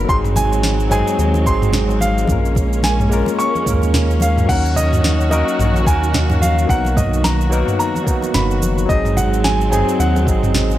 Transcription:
Already playing: F#3 B3 D#4 A#4
0.05 F#3 G#3 C4
0.09 G#1 F#3 G#3 C4 D#4 G#4 C6, kick, cabasa
0.24 mid tom, cabasa
0.36 G#5, muted conga, low conga, cabasa
0.53 cabasa
0.63 snare, high conga, cabasa
0.80 cabasa
0.89 F#3 G#3 C4 D#4 G#4 G#5, mid tom, muted conga, cabasa
1.08 cabasa
1.19 D#2, cabasa
1.34 muted conga, high conga, cabasa
1.43 G#1 F#3 G#3 C4, kick
1.47 D#4 G#4 C6, cabasa
1.62 mid tom, cabasa
1.73 snare, low conga, cabasa
1.89 muted conga, cabasa
2.00 F5, high conga, cabasa
2.18 cabasa
2.25 A#1 G#3 A#3 C#4, kick, mid tom, muted conga
2.29 F4 A#4, cabasa
2.45 cabasa
2.55 kick, low conga, cabasa
2.73 cabasa
2.83 G#5, snare, muted conga, high conga, cabasa
3.00 mid tom, cabasa
3.10 G#3 A#3 C#4 F4 A#4, cabasa
3.26 muted conga, cabasa
3.39 C#6, cabasa
3.55 high conga, cabasa
3.63 D#2 G#3 A#3 C#4, kick, mid tom
3.67 F4 A#4, cabasa
3.82 muted conga, cabasa
3.94 snare, low conga, cabasa
4.11 cabasa
4.20 F5, muted conga, high conga, cabasa
4.38 mid tom, cabasa
4.45 F#3 A#3 C#4 F#5, kick
4.49 D#2 D#3 D#4 F#4 A#4, crash, cabasa
4.66 cabasa
4.76 D#5, low conga, cabasa
4.93 mid tom, muted conga, cabasa
5.04 snare, high conga, cabasa
5.21 cabasa
5.29 F#3 A#3 C#4 D#4 A#4 D#5, muted conga, cabasa
5.48 cabasa
5.59 A#1, mid tom, cabasa
5.74 high conga, cabasa
5.83 D#2 F#3 A#3 C#4, kick, muted conga
5.87 D#4 A#4 G#5, cabasa
6.04 cabasa
6.14 snare, low conga, cabasa
6.30 mid tom, muted conga, cabasa
6.42 F5, high conga, cabasa
6.59 cabasa
6.65 B1 F#3 A#3 B3 F#4, kick
6.70 D#4 A#4 F#5, cabasa
6.85 muted conga, cabasa
6.97 D#5, kick, mid tom, low conga, cabasa
7.14 cabasa
7.24 A#5, snare, muted conga, high conga, cabasa
7.41 cabasa
7.50 F#3 A#3 B3 D#4 A#4, cabasa
7.68 mid tom, cabasa
7.79 A#5, muted conga, cabasa
7.95 high conga, cabasa
8.03 F#3 A#3 B3, kick
8.07 D#4 F#4, cabasa
8.22 muted conga, cabasa
8.34 F#1 B5, snare, mid tom, low conga, cabasa
8.51 cabasa
8.62 high conga, cabasa
8.78 muted conga, cabasa
8.86 G#1 F#3 G#3 C4 D#5, kick
8.90 D#4 G#4, cabasa
9.05 mid tom, cabasa
9.17 F#5, muted conga, low conga, cabasa
9.34 cabasa
9.44 G#5, snare, high conga, cabasa
9.61 cabasa
9.70 F#3 G#3 C4 D#4 G#4 G#5, mid tom, muted conga, cabasa
9.89 cabasa
9.99 D#2 F#5, cabasa
10.16 muted conga, high conga, cabasa
10.23 G#1 F#3 G#3 C4, kick
10.28 D#4 G#4, cabasa
10.43 mid tom, cabasa
10.54 snare, low conga, cabasa
10.70 muted conga, cabasa

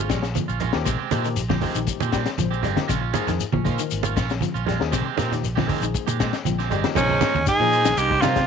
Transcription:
Already playing: F3 A#3 D#4 G#4
0.09 A#1 G3 G#3 C#4, kick, snare, closed hi-hat, shekere
0.23 snare, shekere
0.35 F3, closed hi-hat, high conga, shekere
0.48 A#1 C#4 F4, shekere
0.60 G#3 C#4 F4, muted clean electric guitar stroke, closed hi-hat, low conga
0.73 D#2 F3 A#3 D#4 G4, snare
0.85 A#1 C3 D#3 G#3 C4 G4, kick, closed hi-hat, shekere
0.99 G#3 C4 G4, muted fingered electric bass stroke
1.11 A#2 D#3 F3 G#3 A#3 C4 D#4 G4, closed hi-hat, high conga, shekere
1.24 D#3, closed hi-hat, shekere
1.36 A#1, closed hi-hat, high conga, shekere
1.49 F3 G#3 G4, kick, snare, high conga
1.61 D#3 F3 G#3 A#3 C4 D#4 G4, kick, open hi-hat, low conga, shekere
1.75 A#1 D#3, closed hi-hat, shekere
1.87 kick, closed hi-hat, high conga, shekere
2.00 A#2 G#3 C4 G4, high conga, shekere
2.12 D#3 G3 G#3 C4 G4, kick, snare, closed hi-hat, shekere
2.26 muted fingered electric bass stroke, snare, closed hi-hat, shekere
2.38 A#1 F3 C5, closed hi-hat, high conga, shekere
2.51 G#3 C4 G4, shekere
2.62 G1 D#3 G3 G#3 C4 G4 F5, closed hi-hat, low conga
2.75 F3 A#3 D#4 G4, muted fingered electric bass stroke, snare, closed hi-hat, high conga
2.88 A#1 C#3 G#3 C#4 F4, kick, snare, closed hi-hat, high conga, shekere
3.00 C#4 F4
3.13 F3 G#3 A#3 C#4 D#4 F4 G#4, closed hi-hat, high conga, shekere
3.27 F2 D#3, snare, closed hi-hat, low conga, shekere
3.39 muted fingered electric bass stroke, closed hi-hat, high conga, shekere
3.53 A#2 F3 C#4, muted clean electric guitar stroke, kick, high conga
3.64 F3 G#3 A#3 C#4 D#4 F4 A#4, kick, closed hi-hat, high conga, low conga, shekere
3.79 D#3, closed hi-hat, shekere
3.90 G#1, closed hi-hat, high conga, shekere
4.03 C#4 F4, high conga, shekere
4.15 A#1 C#4 F4, muted clean electric guitar stroke, kick, snare, closed hi-hat, shekere
4.30 snare, shekere
4.41 F3, closed hi-hat, high conga, shekere
4.54 A#1 C#4 F4, shekere
4.66 G3 G#3 F4, muted clean electric guitar stroke, snare, closed hi-hat, low conga
4.79 D#2 F3 A#3 D#4 G#4, snare
4.91 A#1 C3 D#3 G#3 C4 G4, kick, snare, closed hi-hat, high conga, shekere
5.05 G#3 C4 G4
5.16 A#2 D#3 F3 G#3 A#3 C4 D#4 G4, snare, closed hi-hat, high conga, shekere
5.31 D#3, snare, closed hi-hat, low conga, shekere
5.43 A#1, closed hi-hat, high conga, shekere
5.55 F3 G#3 C4 G4, kick, snare, high conga
5.66 D#3 F3 G#3 A#3 C4 D#4 G4 G#4, kick, open hi-hat, high conga, low conga, shekere
5.81 A#1 D#3, closed hi-hat, shekere
5.94 kick, closed hi-hat, high conga, shekere
6.07 A#2 G#3 G4, muted clean electric guitar stroke, high conga, shekere
6.19 D#3 G#3 C4 G4, kick, snare, closed hi-hat, shekere
6.33 muted fingered electric bass stroke, snare, closed hi-hat, shekere
6.44 A#1 F3 G5, closed hi-hat, high conga, shekere
6.59 G#3 C4 G4, snare, shekere
6.70 G1 D#3 G3 G#3 C4 G4 D#5, closed hi-hat, low conga
6.84 F3 A#3 D#4 G4, muted fingered electric bass stroke, snare, closed hi-hat, high conga
6.95 A#1 C3 F3 G#3 A#3 C#4 D#4 G#4 C5, kick, crash, low conga, shekere
7.09 D#4 G#4 C5, high conga
7.21 C#4 D#4 G#4 C5, snare, closed hi-hat, high conga, shekere
7.35 D#2, muted clean electric guitar stroke, high conga, shekere
7.45 D#4 G#4, muted fingered electric bass stroke, kick, snare, closed hi-hat, shekere
7.60 A#2 F3 A#3 D#4 G#4, muted clean electric guitar stroke
7.72 C#4 D#4 G#4 C5, closed hi-hat, shekere
7.85 A#1 D#3, snare, closed hi-hat, shekere
7.96 C2 A#3 D#4 G4 C5, closed hi-hat, shekere
8.11 D#4 G4 C5, kick
8.21 C3 F3 G3 A#3 C4 D#4 F4 G4 C5, snare, closed hi-hat, high conga, shekere
8.36 kick, snare, closed hi-hat, shekere

